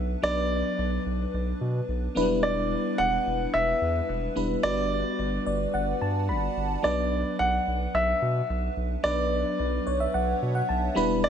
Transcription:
Already playing: sub bass B1, fm electric piano F#3 B3 D4 B4
0.22 sub bass B1, fm electric piano F#3 B3 D4 B4, grand piano D5
0.78 sub bass B1
1.06 sub bass B1
1.33 sub bass B1
1.61 sub bass B2
1.88 sub bass B1
2.15 sub bass E1, fm electric piano F#3 B3 D4 E4 B4
2.21 fm electric piano G3
2.43 grand piano D5
2.98 sub bass E1, grand piano F#5
3.26 sub bass E1
3.54 sub bass E1, grand piano E5
3.81 sub bass E2
4.09 sub bass E1
4.35 sub bass E1, fm electric piano G3 B3 D4 E4 B4
4.63 sub bass G1, fm electric piano G3 B3 D4 F#4 B4, grand piano D5
5.19 sub bass G1
5.46 sub bass G1, fm electric piano D5
5.74 sub bass G1, fm electric piano F#5
6.01 sub bass G2, fm electric piano A5
6.29 sub bass G1, fm electric piano B5
6.56 sub bass G1
6.82 sub bass B1, fm electric piano F#3 B3 D4 B4, grand piano D5
7.39 sub bass B1, grand piano F#5
7.67 sub bass B1
7.94 sub bass B1, grand piano E5
8.22 sub bass B2
8.49 sub bass B1
8.76 sub bass B1
9.03 sub bass B1, fm electric piano F#3 B3 D4 B4, grand piano D5
9.59 sub bass B1
9.87 sub bass B1, fm electric piano C#5
10.00 fm electric piano E5
10.14 sub bass B1, fm electric piano F#5
10.42 sub bass B2
10.55 fm electric piano F#5
10.69 sub bass B1, fm electric piano A5
10.95 sub bass E1, fm electric piano G3 B3 D4 E4 B4 B5
11.24 grand piano D5

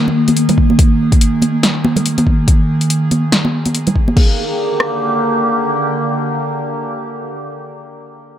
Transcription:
Already playing: synth drone D#3 A#3 G#4
0.08 high conga
0.28 closed hi-hat, high conga
0.37 closed hi-hat
0.49 closed hi-hat, low conga
0.58 kick
0.70 high conga
0.79 kick, closed hi-hat
1.12 kick, closed hi-hat
1.21 closed hi-hat
1.42 closed hi-hat, high conga
1.63 snare, closed hi-hat
1.85 high conga
1.96 closed hi-hat, low conga
2.06 closed hi-hat
2.18 closed hi-hat, high conga
2.27 kick
2.48 kick, closed hi-hat
2.81 closed hi-hat
2.90 closed hi-hat
3.11 closed hi-hat, high conga
3.32 snare, closed hi-hat
3.45 high conga
3.65 closed hi-hat, high conga
3.75 closed hi-hat
3.87 closed hi-hat, low conga
3.96 kick
4.08 high conga
4.17 synth drone D3 A#3 G4, kick, crash
4.80 cross-stick

